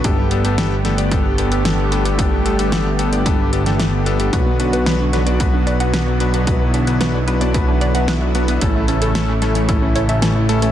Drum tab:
HH |x-xxx-xxx-xxx-xx|x-xxx-xxx-xxx-xx|x-xxx-xxx-xxx-xx|x-xxx-xxx-xxx-xx|
SD |----o-o-----o---|----o------oo---|----o-o-----o---|----o-------o---|
BD |o-------o-------|o-------o-------|o-------o-------|o-------o-------|

HH |x-xxx-xxx-xxx-xx|
SD |----o-o-----o---|
BD |o-------o-------|